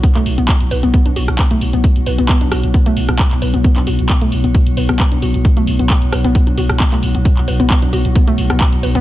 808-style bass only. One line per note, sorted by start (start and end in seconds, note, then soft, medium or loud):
0.15 0.25 B1 medium
0.26 0.37 B1 loud
0.38 0.48 B1 medium
0.60 0.70 B1 medium
0.71 0.82 B1 loud
0.83 0.93 B1 medium
1.06 1.16 B1 medium
1.16 1.28 B1 medium
1.28 1.39 B1 medium
1.51 1.61 B1 medium
1.61 1.73 B1 medium
1.73 1.84 B1 medium
1.96 2.06 B1 medium
2.06 2.18 B1 loud
2.18 2.29 B1 medium
2.41 2.51 B1 medium
2.52 2.63 B1 loud
2.63 2.74 B1 medium
2.86 2.96 B1 medium
2.97 3.08 B1 medium
3.09 3.19 B1 medium
3.31 3.41 B1 medium
3.42 3.53 B1 medium
3.54 3.64 B1 medium
3.76 3.86 B1 medium
3.87 3.98 B1 loud
3.99 4.09 B1 medium
4.21 4.31 B1 medium
4.32 4.43 B1 loud
4.44 4.54 B1 medium
4.67 4.77 B1 medium
4.77 4.88 B1 loud
4.89 5.00 B1 medium
5.12 5.22 B1 medium
5.22 5.34 B1 loud
5.34 5.45 B1 medium
5.57 5.67 B1 medium
5.67 5.79 B1 loud
5.79 5.90 B1 medium
6.02 6.12 B1 medium
6.13 6.24 B1 loud
6.24 6.35 B1 medium
6.47 6.57 B1 medium
6.58 6.69 B1 medium
6.70 6.80 B1 medium
6.92 7.02 B1 medium
7.03 7.14 B1 medium
7.15 7.25 B1 medium
7.37 7.47 B1 medium
7.48 7.59 B1 loud
7.60 7.70 B1 medium
7.82 7.92 B1 medium
7.93 8.04 B1 loud
8.05 8.15 B1 medium
8.27 8.37 B1 medium
8.38 8.49 B1 medium
8.50 8.60 B1 medium
8.72 8.82 B1 medium
8.83 8.94 B1 medium
8.95 9.01 B1 medium